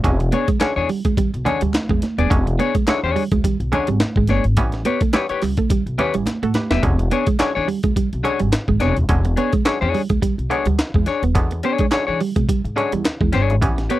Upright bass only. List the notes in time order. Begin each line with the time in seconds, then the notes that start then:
0.04 E1
0.48 muted upright bass stroke
0.60 muted upright bass stroke
0.76 E2
1.05 D2
1.17 muted upright bass stroke
1.34 B1
1.62 D2
1.89 E2
2.18 D#1
2.31 E1
2.75 muted upright bass stroke
2.87 muted upright bass stroke
3.03 E2
3.32 D2
3.44 muted upright bass stroke
3.60 B1
3.88 G#1
4.16 G#1
4.28 G1
4.45 G#1
4.57 A1
5.01 muted upright bass stroke
5.30 muted upright bass stroke
5.42 C#2
5.70 muted upright bass stroke
5.86 B1
6.15 A1
6.43 A2
6.71 D#1
6.83 E1
7.27 muted upright bass stroke
7.41 muted upright bass stroke
7.57 E2
7.84 D2
7.96 muted upright bass stroke
8.13 B1
8.41 G#1
8.68 G#1
8.81 E1
8.98 D#1
9.09 E1
9.53 muted upright bass stroke
9.66 muted upright bass stroke
9.82 E2
10.10 D2
10.22 muted upright bass stroke
10.38 B1
10.66 D2
10.94 E2
11.22 D#1
11.35 E2
11.79 muted upright bass stroke
11.93 muted upright bass stroke
12.08 E3
12.36 B2
12.49 muted upright bass stroke
12.64 G#2
12.93 E2
13.21 E2
13.34 G1
13.50 G#1
13.62 A1